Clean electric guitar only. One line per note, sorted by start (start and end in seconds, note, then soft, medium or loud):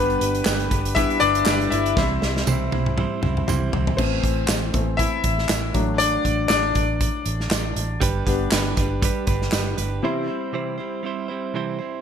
0.00 0.20 G3 loud
0.00 0.21 D4 loud
0.00 0.21 G4 loud
0.00 0.18 B4 loud
0.20 0.45 D4 medium
0.20 0.46 G4 medium
0.20 0.45 B4 medium
0.45 0.71 G3 medium
0.45 0.71 D4 medium
0.45 0.71 G4 medium
0.45 0.69 B4 medium
0.70 0.95 D4 soft
0.70 0.96 G4 medium
0.70 0.96 B4 medium
0.95 1.21 G3 medium
0.95 1.22 D4 medium
0.95 1.21 G4 medium
0.95 1.19 B4 medium
1.20 1.45 D4 medium
1.20 1.46 G4 medium
1.20 1.46 B4 medium
1.46 1.71 G3 medium
1.46 1.72 D4 medium
1.46 1.71 G4 loud
1.46 1.70 B4 medium
1.71 1.98 D4 soft
1.71 1.97 G4 soft
1.71 1.97 B4 medium
1.96 2.22 C3 medium
1.96 2.22 E3 loud
1.96 2.23 G3 medium
1.96 2.22 C4 medium
1.96 2.21 E4 loud
1.96 2.20 C5 medium
2.21 2.46 G3 medium
2.21 2.47 C4 medium
2.21 2.47 E4 medium
2.21 2.47 C5 medium
2.46 2.72 C3 medium
2.46 2.72 E3 medium
2.46 2.73 G3 medium
2.46 2.73 C4 medium
2.46 2.71 E4 medium
2.46 2.70 C5 medium
2.71 2.95 G3 soft
2.71 2.97 C4 medium
2.71 2.97 E4 medium
2.71 2.97 C5 medium
2.97 3.22 G3 medium
2.97 3.23 C4 medium
2.97 3.22 E4 medium
2.97 3.20 C5 medium
3.22 3.47 G3 soft
3.22 3.47 C4 medium
3.22 3.48 E4 medium
3.22 3.48 C5 medium
3.47 3.73 C3 medium
3.47 3.73 E3 medium
3.47 3.73 G3 medium
3.47 3.74 C4 medium
3.47 3.72 E4 medium
3.47 3.71 C5 medium
3.72 4.00 G3 soft
3.72 3.99 C4 soft
3.72 3.99 E4 soft
3.72 3.98 C5 medium
8.00 8.26 G3 medium
8.00 8.27 D4 medium
8.00 8.26 G4 loud
8.00 8.25 B4 loud
8.26 8.51 D4 medium
8.26 8.52 G4 medium
8.26 8.51 B4 medium
8.51 8.77 G3 medium
8.51 8.77 D4 medium
8.51 8.77 G4 medium
8.51 8.75 B4 medium
8.77 9.02 D4 soft
8.77 9.03 G4 medium
8.77 9.02 B4 medium
9.02 9.27 G3 medium
9.02 9.28 D4 medium
9.02 9.28 G4 medium
9.02 9.26 B4 medium
9.27 9.52 D4 medium
9.27 9.53 G4 medium
9.27 9.52 B4 medium
9.52 9.78 G3 medium
9.52 9.78 D4 medium
9.52 9.78 G4 loud
9.52 9.76 B4 loud
9.77 10.04 D4 soft
9.77 10.04 G4 medium
9.77 10.03 B4 medium
10.03 10.28 C3 medium
10.03 10.28 E3 medium
10.03 10.29 G3 loud
10.03 10.29 C4 loud
10.03 10.28 E4 loud
10.03 10.26 C5 loud
10.28 10.52 G3 medium
10.28 10.53 C4 medium
10.28 10.53 E4 medium
10.28 10.53 C5 medium
10.53 10.78 C3 medium
10.53 10.79 E3 medium
10.53 10.79 G3 medium
10.53 10.79 C4 medium
10.53 10.78 E4 medium
10.53 10.76 C5 medium
10.78 11.02 G3 soft
10.78 11.03 C4 medium
10.78 11.04 E4 medium
10.78 11.03 C5 medium
11.03 11.29 G3 medium
11.03 11.29 C4 medium
11.03 11.28 E4 medium
11.03 11.27 C5 medium
11.28 11.54 G3 soft
11.28 11.54 C4 medium
11.28 11.55 E4 medium
11.28 11.54 C5 medium
11.54 11.79 C3 medium
11.54 11.80 E3 medium
11.54 11.80 G3 medium
11.54 11.80 C4 medium
11.54 11.79 E4 medium
11.54 11.77 C5 medium
11.79 12.01 G3 soft
11.79 12.01 C4 soft
11.79 12.01 E4 medium
11.79 12.01 C5 medium